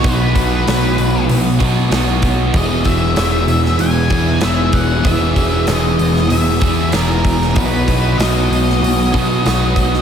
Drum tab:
HH |o-o-o-o-o-o-o-o-|o-o-o-o-o-o-o-o-|o-o-o-o-o-o-o-o-|o-o-o-o-o-o-o-o-|
SD |----o-------o---|----o--o----o---|----o--o----o--o|----o--o----o--o|
BD |o-o-------o---o-|o-o-------o---o-|o-o-------o---o-|o-o-------o---o-|